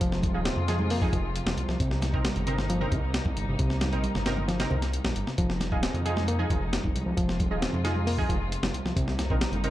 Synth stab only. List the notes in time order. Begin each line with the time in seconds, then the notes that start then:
0.34 D#4 F4 G#4
0.68 D#4 F4 G#4
1.02 D#4 F4 G#4
2.14 C4 D#4 A#4
2.47 C4 D#4 A#4
2.81 C4 D#4 A#4
3.93 C4 D#4 A#4
4.26 C4 D#4 A#4
4.60 C4 D#4 A#4
5.72 D#4 F4 G#4
6.05 D#4 F4 G#4
6.39 D#4 F4 G#4
7.51 D#4 F4 G#4
7.84 D#4 F4 G#4
8.18 D#4 F4 G#4
9.30 C4 D#4 A#4
9.64 C4 D#4 A#4